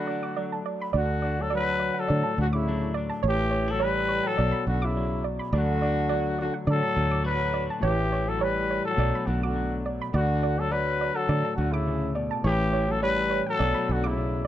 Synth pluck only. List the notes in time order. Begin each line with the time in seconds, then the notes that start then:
0.07 D5
0.23 D6
0.36 D5
0.52 A5
0.66 D5
0.81 B5
0.93 D5
1.22 D5
1.50 D5
1.79 D5
1.94 F#5
2.08 D5
2.23 A5
2.53 D6
2.94 D5
3.10 A5
3.23 C#5
3.51 C#5
3.80 C#5
4.08 C#5
4.23 G5
4.38 D5
4.52 B5
4.82 D6
5.24 D5
5.39 B5
5.53 D5
5.82 D5
6.09 D5
6.38 D5
6.54 F#5
6.67 D5
6.83 A5
7.11 D6
7.54 D5
7.70 A5
7.83 C#5
8.12 C#5
8.41 C#5
8.71 C#5
8.99 D5
9.15 B5
9.43 D6
9.86 D5
10.02 B5
10.14 D5
10.43 D5
10.71 D5
11.01 D5
11.16 F#5
11.29 D5
11.45 A5
11.73 D6
12.15 D5
12.31 A5
12.44 C#5
12.73 C#5
13.03 C#5
13.30 C#5
13.46 G5
13.59 D5
13.74 B5
14.04 D6